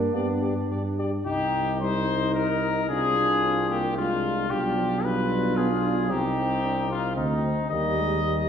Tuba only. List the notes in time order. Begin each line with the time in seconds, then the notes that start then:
0.13 G2
0.70 G2
1.26 C2
2.90 C2
4.50 B1
6.10 C2
7.17 D2
7.71 D#2